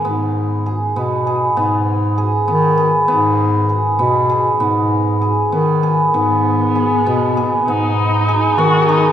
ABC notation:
X:1
M:5/8
L:1/8
Q:1/4=99
K:G#m
V:1 name="Hammered dulcimer"
B,2 G B, G | B,2 G B, G | B,2 G B, G | B,2 G B, G |
B,2 G B, G | B,2 G B, G |]
V:2 name="Viola"
z4 z | z4 z | z4 z | z4 z |
B,4- B, | D3 F D |]
V:3 name="Bass clarinet" clef=bass
G,,3 B,,2 | G,,3 D,2 | G,,3 B,,2 | G,,3 D,2 |
G,,3 B,,2 | G,,3 D,2 |]